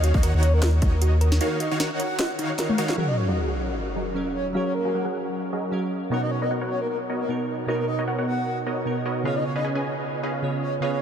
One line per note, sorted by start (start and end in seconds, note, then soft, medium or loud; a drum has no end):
0.00 0.12 D#2 loud
0.00 0.12 D#3 loud
0.00 0.12 D#4 medium
0.00 0.12 F#4 medium
0.00 0.11 F#4 medium
0.00 0.12 C#5 medium
0.00 0.12 F5 loud
0.00 closed hi-hat medium
0.04 0.12 C#5 medium
0.14 0.21 D#2 medium
0.14 0.21 D#3 medium
0.14 0.21 D#4 medium
0.14 0.21 F#4 medium
0.14 0.21 C#5 medium
0.14 0.23 D#5 medium
0.14 0.21 F5 loud
0.14 kick loud
0.23 0.32 D#2 loud
0.23 0.33 D#3 medium
0.23 0.33 D#4 medium
0.23 0.33 F#4 medium
0.23 0.28 A#4 loud
0.23 0.33 C#5 medium
0.23 0.33 F#5 medium
0.23 closed hi-hat medium
0.34 0.80 D#2 loud
0.34 0.80 D#3 medium
0.34 0.80 D#4 medium
0.34 0.80 F#4 medium
0.34 0.80 C#5 medium
0.34 0.80 F#5 medium
0.43 0.50 C#5 medium
0.43 0.52 C#5 medium
0.43 closed hi-hat medium
0.54 0.59 A#4 medium
0.62 0.69 A#4 medium
0.62 0.73 D#5 medium
0.62 snare loud
0.62 closed hi-hat medium
0.82 1.39 D#2 medium
0.82 1.39 D#3 medium
0.82 0.92 D#4 medium
0.82 1.39 D#4 medium
0.82 1.39 F#4 medium
0.82 1.39 C#5 medium
0.82 1.39 D#5 medium
0.82 kick loud
0.82 closed hi-hat medium
0.93 1.02 A#4 medium
1.01 1.09 F#4 medium
1.01 closed hi-hat medium
1.21 1.31 A#4 loud
1.21 closed hi-hat medium
1.32 snare medium
1.41 1.69 D#3 loud
1.41 1.48 D#4 medium
1.41 1.69 D#4 medium
1.41 1.69 F#4 medium
1.41 1.48 A#4 medium
1.41 1.69 C#5 medium
1.41 1.69 F5 loud
1.41 closed hi-hat medium
1.51 1.57 A#4 medium
1.60 1.68 F#4 medium
1.60 1.71 D#5 medium
1.60 closed hi-hat medium
1.71 1.78 D#3 medium
1.71 1.78 D#4 medium
1.71 1.78 F#4 medium
1.71 1.78 C#5 medium
1.71 1.78 F5 loud
1.80 1.89 D#3 medium
1.80 1.89 D#4 medium
1.80 1.89 F#4 medium
1.80 1.84 A#4 loud
1.80 1.89 C#5 medium
1.80 1.89 F#5 medium
1.80 snare medium
1.80 closed hi-hat medium
1.91 2.37 D#3 medium
1.91 2.37 D#4 medium
1.91 2.37 F#4 medium
1.91 2.37 C#5 medium
1.91 2.37 F#5 medium
2.00 2.07 C#5 medium
2.00 2.30 F#5 medium
2.00 closed hi-hat medium
2.19 2.29 D#5 medium
2.19 snare loud
2.19 closed hi-hat medium
2.39 2.76 D#3 medium
2.39 2.46 D#4 medium
2.39 2.76 D#4 medium
2.39 2.76 F#4 medium
2.39 2.76 C#5 medium
2.39 2.76 F5 loud
2.39 closed hi-hat medium
2.50 2.53 C#5 medium
2.58 2.66 A#4 loud
2.58 snare medium
2.58 closed hi-hat medium
2.69 2.73 C#5 medium
2.69 high tom medium
2.78 2.96 D#3 loud
2.78 2.96 D#4 medium
2.78 2.96 F#4 medium
2.78 2.82 A#4 medium
2.78 2.96 C#5 medium
2.78 2.96 F5 loud
2.78 closed hi-hat medium
2.89 snare medium
2.96 4.12 F#3 medium
2.96 3.26 F#3 medium
2.96 4.13 C#4 medium
2.96 3.26 G#4 medium
2.96 3.26 A#4 medium
2.96 4.14 A#4 medium
2.96 3.06 F#5 medium
2.96 sub drop medium
3.08 3.15 D#5 medium
3.17 3.26 C#5 medium
3.28 3.35 F#3 medium
3.28 3.35 F#4 medium
3.28 3.35 G#4 medium
3.28 3.35 A#4 medium
3.28 3.37 D#5 medium
3.28 3.35 F5 medium
3.37 3.46 F#3 medium
3.37 3.46 F#4 medium
3.37 3.46 G#4 medium
3.37 3.46 A#4 medium
3.37 3.46 F#5 medium
3.48 3.94 F#3 medium
3.48 3.94 F#4 medium
3.48 3.94 G#4 medium
3.48 3.94 A#4 medium
3.48 3.94 F#5 medium
3.96 4.53 F#3 medium
3.96 4.53 F#4 medium
3.96 4.52 G#4 medium
3.96 4.53 A#4 medium
3.96 4.53 D#5 medium
4.14 4.52 F#3 medium
4.14 4.52 C#4 medium
4.14 4.53 A#4 medium
4.14 4.53 F5 medium
4.35 4.46 C#5 medium
4.53 5.69 F#3 medium
4.53 4.82 F#3 medium
4.53 5.70 C#4 medium
4.53 4.82 F#4 medium
4.53 4.82 G#4 medium
4.53 4.82 A#4 medium
4.53 4.63 C#5 medium
4.53 4.82 F5 loud
4.57 5.71 A#4 medium
4.66 4.73 C#5 medium
4.74 5.05 A#4 medium
4.85 4.92 F#3 medium
4.85 4.92 F#4 medium
4.85 4.92 G#4 medium
4.85 4.92 A#4 medium
4.85 4.92 F5 medium
4.94 5.03 F#3 medium
4.94 5.03 F#4 medium
4.94 5.03 G#4 medium
4.94 5.03 A#4 medium
4.94 5.03 F#5 medium
5.05 5.51 F#3 medium
5.05 5.51 F#4 medium
5.05 5.51 G#4 medium
5.05 5.51 A#4 medium
5.05 5.51 F#5 medium
5.53 6.09 F#3 medium
5.53 6.09 F#4 medium
5.53 6.09 G#4 medium
5.53 6.09 A#4 medium
5.53 6.09 D#5 medium
5.71 6.09 F#3 medium
5.71 6.09 C#4 medium
5.71 6.10 A#4 medium
5.71 6.10 F5 medium
6.10 7.26 B2 medium
6.10 7.27 B3 medium
6.10 6.39 B3 medium
6.10 7.27 D#4 medium
6.10 6.39 F#4 medium
6.10 6.39 A#4 medium
6.10 7.28 A#4 medium
6.10 6.39 C#5 medium
6.10 6.39 D#5 loud
6.10 6.20 F#5 medium
6.22 6.29 D#5 medium
6.31 6.40 C#5 medium
6.42 6.49 B3 medium
6.42 6.49 F#4 medium
6.42 6.49 A#4 medium
6.42 6.49 C#5 medium
6.42 6.51 D#5 medium
6.42 6.49 D#5 medium
6.51 6.60 B3 medium
6.51 6.60 F#4 medium
6.51 6.60 A#4 medium
6.51 6.60 C#5 medium
6.51 6.60 F#5 medium
6.61 7.07 B3 medium
6.61 7.07 F#4 medium
6.61 7.07 A#4 medium
6.61 7.07 C#5 medium
6.61 7.07 F#5 medium
6.70 6.79 C#5 medium
6.81 6.87 A#4 medium
6.90 6.97 A#4 medium
7.10 7.66 B3 medium
7.10 7.66 F#4 medium
7.10 7.66 A#4 medium
7.10 7.66 C#5 medium
7.10 7.66 D#5 medium
7.20 7.29 A#4 medium
7.28 7.65 B2 medium
7.28 7.66 B3 medium
7.28 7.66 D#4 medium
7.28 7.67 A#4 medium
7.66 8.83 B2 medium
7.66 8.83 B3 medium
7.66 7.96 B3 medium
7.66 8.84 D#4 medium
7.66 7.96 F#4 medium
7.66 7.75 A#4 medium
7.66 7.96 A#4 medium
7.66 7.96 C#5 medium
7.66 7.96 D#5 loud
7.70 8.85 A#4 loud
7.79 7.85 A#4 medium
7.88 7.99 D#5 medium
7.99 8.05 B3 medium
7.99 8.05 F#4 medium
7.99 8.05 A#4 medium
7.99 8.05 C#5 medium
7.99 8.05 D#5 medium
8.08 8.17 B3 medium
8.08 8.17 F#4 medium
8.08 8.17 A#4 medium
8.08 8.17 C#5 medium
8.08 8.17 F#5 medium
8.18 8.64 B3 medium
8.18 8.64 F#4 medium
8.18 8.64 A#4 medium
8.18 8.64 C#5 medium
8.18 8.64 F#5 medium
8.27 8.57 F#5 medium
8.66 9.04 B3 medium
8.66 9.03 F#4 medium
8.66 9.04 A#4 medium
8.66 9.04 C#5 medium
8.66 9.04 D#5 loud
8.85 9.23 B2 medium
8.85 9.23 B3 medium
8.85 9.23 D#4 medium
8.85 9.24 A#4 medium
9.06 9.23 B3 medium
9.06 9.23 F#4 medium
9.06 9.23 A#4 medium
9.06 9.23 C#5 medium
9.06 9.23 D#5 loud
9.23 10.40 C#3 medium
9.23 10.40 B3 medium
9.23 9.53 C#4 medium
9.23 10.41 F4 medium
9.23 9.53 G#4 medium
9.23 9.53 B4 medium
9.23 10.42 C#5 loud
9.23 9.53 D#5 medium
9.23 9.34 F5 medium
9.23 9.53 F5 medium
9.36 9.43 D#5 medium
9.45 9.53 C#5 medium
9.55 9.62 C#4 medium
9.55 9.62 G#4 medium
9.55 9.62 B4 medium
9.55 9.64 D#5 medium
9.55 9.62 D#5 medium
9.55 9.62 F5 medium
9.64 9.74 C#4 medium
9.64 9.74 G#4 medium
9.64 9.74 B4 medium
9.64 9.74 D#5 medium
9.64 9.74 G#5 medium
9.75 10.21 C#4 medium
9.75 10.21 G#4 medium
9.75 10.21 B4 medium
9.75 10.21 D#5 medium
9.75 10.21 G#5 medium
10.23 10.80 C#4 medium
10.23 10.80 G#4 medium
10.23 10.80 B4 medium
10.23 10.80 D#5 medium
10.23 10.80 F5 medium
10.42 10.79 C#3 medium
10.42 10.80 B3 medium
10.42 10.80 F4 medium
10.42 10.80 C#5 medium
10.62 10.73 C#5 medium
10.80 11.02 C#3 medium
10.80 11.02 B3 medium
10.80 11.02 C#4 medium
10.80 11.02 F4 medium
10.80 11.02 G#4 medium
10.80 11.02 B4 medium
10.80 10.91 C#5 medium
10.80 11.02 D#5 medium
10.80 11.02 F5 loud
10.84 11.02 C#5 medium
10.93 11.00 C#5 medium